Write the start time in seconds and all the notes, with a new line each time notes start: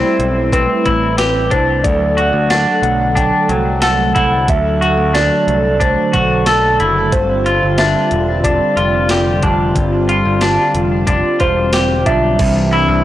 Already playing: G3 A3 C4 E4 C5
0.19 B1, closed hi-hat
0.52 C4 B4, kick, closed hi-hat
0.85 A1 E4, kick, closed hi-hat
1.18 G4 B4, snare, closed hi-hat
1.51 C2 D4 C5, kick, closed hi-hat
1.84 D2 D3 F#3 A3 A4 D5, kick, closed hi-hat
2.17 F#4, closed hi-hat
2.33 D2
2.50 D4 F#5, snare, closed hi-hat, tambourine
2.82 B1 F#5, closed hi-hat
3.15 D4 G5, kick, closed hi-hat
3.49 C2 F#3, closed hi-hat
3.82 A4 F#5, snare, closed hi-hat, tambourine
4.15 C2 E4 F#5, kick, closed hi-hat
4.48 D2 E5, kick, closed hi-hat
4.81 F#4, closed hi-hat
4.98 D2
5.14 D4 D5, snare, closed hi-hat, tambourine
5.48 C2, closed hi-hat
5.80 D4 C5, kick, closed hi-hat
6.13 B1 F#4, kick, closed hi-hat
6.46 A4, snare, closed hi-hat, tambourine
6.80 F#1 E4, closed hi-hat
7.12 G1 G3 C4 F4 C5, kick, closed hi-hat
7.46 F4, closed hi-hat
7.63 G1
7.78 D4 E5, snare, closed hi-hat, tambourine
8.11 E1, closed hi-hat
8.44 D4 D5, kick, closed hi-hat
8.77 F1 F4, closed hi-hat
9.09 G4, snare, closed hi-hat, tambourine
9.42 F1 D4, kick, closed hi-hat
9.75 G1, kick, closed hi-hat
10.09 F4, closed hi-hat
10.25 G1
10.41 D4, snare, closed hi-hat, tambourine
10.75 F1, closed hi-hat
11.07 D4, kick, closed hi-hat
11.40 E1 F4 C5, kick, closed hi-hat
11.73 G4, snare, closed hi-hat, tambourine
12.06 B1 D4 E5, kick, closed hi-hat
12.39 C2 E3 G3 C4 D4, kick, crash, ride
12.73 E4, ride
12.88 C2